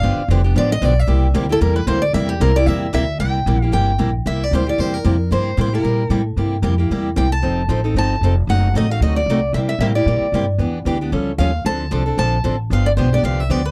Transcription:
Already playing: F5
0.02 G1 D3 F3 B3 D4 G4
0.17 muted upright bass stroke
0.28 F1 D3 F3 B3 D4 G4
0.44 B3 D4 G4
0.55 A1 D3 F3 B3 D4 G4 D5
0.72 D#5
0.81 B1 D3 F3 B3 D4 G4 D5
0.99 E5
1.07 C2 C3 G3 A#3 E4 G4
1.34 D2 C3 G3 A#3 E4 G4
1.49 A#3 E4 G4 A4
1.61 E2 C3 G3 A#3 E4 G4 A#4
1.76 B4
1.87 D2 C3 G3 A#3 E4 G4 C5
2.02 D5
2.13 E2 C3 G3 A#3 E4 G4 E5
2.29 G4
2.40 C2 C3 G3 A#3 E4 G4 A#4
2.56 A#3 E4 G4 D5
2.66 E2 C3 G3 A#3 E4 G4 E5
2.93 D2 C3 G3 A#3 E4 G4 E5
3.19 C2 C3 G3 A#3 E4 G4 G5
3.46 A#1 C3 G3 A#3 E4 G4
3.62 A#3 E4 G4
3.72 G1 C3 G3 A#3 E4 G4 G5
3.98 A#1 C3 G3 A#3 E4 G4
4.26 C2 C3 G3 A#3 E4 G4 E5
4.44 D5
4.51 D2 C3 G3 A#3 E4 G4 C5
4.67 A#3 E4 G4 D5
4.78 E2 C3 G3 A#3 E4 G4 C5
4.94 A#4
5.04 F2 C3 G3 A#3 E4 G4
5.31 G2 C3 G3 A#3 E4 G4 C5
5.57 A2 C3 G3 A#3 E4 G4 C5
5.73 A#3 E4 G4 A#4
5.84 A#2 C3 G3 A#3 E4 G4
6.10 A2 C3 G3 A#3 E4 G4 A4
6.36 G2 C3 G3 A#3 E4 G4
6.62 F2 C3 G3 A#3 E4 G4
6.78 A#3 E4 G4
6.90 E2 C3 G3 A#3 E4 G4
7.16 C2 C3 G3 A#3 E4 G4 G5
7.32 A5
7.42 F1 F3 C4 D#4 A4
7.68 A1 F3 C4 D#4 A4
7.84 C4 D#4 A4
7.94 G1 F3 C4 D#4 A4
7.98 A5
8.21 F1 F3 C4 D#4 A4
8.47 F#1 C3 F#3 A3 D#4 F#4 F#5
8.74 A1 C3 F#3 A3 D#4 F#4 D#5
8.90 A3 D#4 F#4 F5
9.00 D2 C3 F#3 A3 D#4 F#4 D#5
9.16 D5
9.26 C2 C3 F#3 A3
9.30 D#4 F#4
9.53 C3 G3 A#3 E4 G4 E5
9.69 E5
9.79 A2 C3 G3 A#3 E4 G4 E5
9.95 A#3 E4 G4 D5
10.06 A#2 C3 G3 A#3 E4 G4
10.20 muted upright bass stroke
10.32 G2 C3 G3 A#3 E4 G4
10.58 E2 E3 B3 D4 G4
10.85 D2 E3 B3 D4 G4
11.01 B3 D4 G4
11.12 C#2 F3 G3 C#4 F4 A4
11.38 D#2 F3 G3 C#4 F4 A4 F5
11.65 D2 D3 F3 C4 D4 A4 A5
11.91 C2 D3 F3 C4 D4 A4
12.06 C4 D4 A4
12.17 A#1 D3 F3 C4 D4 A4 A5
12.44 A1 D3 F3 C4 D4 A4
12.70 G1 D3 F3 B3 D4 G4 F5
12.86 D5
12.97 B1 D3 F3 B3 D4 G4 C5
13.13 B3 D4 G4 D5
13.23 C2 D3 F3 B3 D4 G4 F5
13.40 E5
13.49 D2 D3 F3 B3 D4 G4 D5
13.65 C5

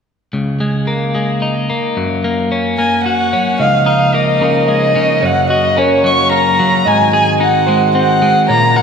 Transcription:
0.33 C#2
0.60 G#3
0.87 A#3
1.15 G#3
1.42 D#4
1.70 A#3
1.97 F#2
2.24 A#3
2.52 C#4
2.78 A#3 G#5
3.04 F#4 F#5
3.33 C#4
3.59 C#2 C#3 F3 A#3 D#4 D#5 F5
3.86 D#4 F5
4.14 A#3 D#5
4.41 C#3 A#4
4.68 G#3 D#5
4.95 C#3
5.22 F#2 F#3 C#5 F5 F#5
5.50 F#4 D#5
5.77 C#4 A#4 C#5
6.03 F#3 C#5 C#6
6.31 A#3 C#5 A#5
6.60 F#3
6.85 G#2 D#3 G#3 C4 F#4 D#5 G#5
7.13 G#4 G#5
7.41 D#4 F#5
7.67 G#3 C5
7.95 C4 F#5
8.22 G#3
8.48 A#2 C#3 A#3 F4 C#5 A#5
8.76 A#4 F#5

